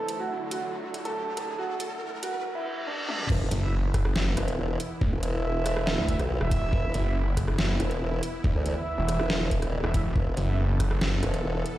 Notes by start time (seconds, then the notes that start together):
Already playing: D3 F#3 A3 E4 A4, riser
0.08 closed hi-hat
0.19 F#4
0.51 F#4, closed hi-hat
0.94 closed hi-hat
1.05 A4, closed hi-hat
1.37 A4, closed hi-hat
1.58 F#4
1.80 closed hi-hat
2.23 F#4, closed hi-hat
2.44 reverse cymbal
2.55 E4
2.87 D4
3.09 D4, high tom
3.19 mid tom
3.30 E1 E3 B3 E4, kick, crash, impact
3.51 F#1, closed hi-hat
3.62 E4 B4 E5
3.94 kick, cross-stick, closed hi-hat
4.05 cross-stick
4.16 snare
4.37 E1, cross-stick, closed hi-hat
4.48 closed hi-hat
4.59 E1
4.80 closed hi-hat
5.01 D2, kick
5.12 E1
5.23 closed hi-hat
5.34 E4 B4 E5
5.66 cross-stick, closed hi-hat
5.77 cross-stick
5.87 snare
5.98 D2
6.08 E4 B4 E5, kick, closed hi-hat
6.19 B1, cross-stick, closed hi-hat
6.41 E1 E4 B4 E5, cross-stick
6.51 kick, closed hi-hat
6.73 E1, kick
6.94 F#1, closed hi-hat
7.05 E4 B4 E5
7.37 kick, cross-stick, closed hi-hat
7.48 cross-stick
7.59 snare
7.80 E1, cross-stick, closed hi-hat
7.91 closed hi-hat
8.01 E1
8.23 closed hi-hat
8.44 D2, kick
8.55 D2
8.66 closed hi-hat
8.77 E4 B4 E5
8.98 E1
9.09 cross-stick, closed hi-hat
9.19 E1, cross-stick
9.30 snare
9.51 kick, closed hi-hat
9.62 D#1, cross-stick, closed hi-hat
9.84 E1 E4 B4 E5, cross-stick
9.94 E4 B4 E5, kick, closed hi-hat
10.16 E1 A4, kick
10.37 F#1, closed hi-hat
10.48 E4 B4 E5
10.80 kick, cross-stick, closed hi-hat
10.91 cross-stick
11.01 snare
11.23 E1, cross-stick, closed hi-hat
11.34 closed hi-hat
11.44 E1
11.66 closed hi-hat